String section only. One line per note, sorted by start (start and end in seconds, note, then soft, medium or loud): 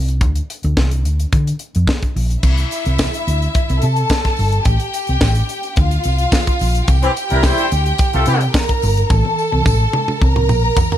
2.43 3.79 E4 medium
2.43 3.79 E5 medium
3.81 4.64 A4 medium
3.81 4.64 A5 medium
4.65 5.74 G4 medium
4.65 5.75 G5 medium
5.78 6.86 F4 medium
5.78 6.87 F5 medium
6.89 8.52 G4 medium
6.89 8.52 G5 medium
8.54 9.09 A#4 medium
8.54 9.09 A#5 medium
9.10 10.19 A4 medium
9.10 10.19 A5 medium
10.22 10.98 A#4 medium
10.22 10.98 A#5 medium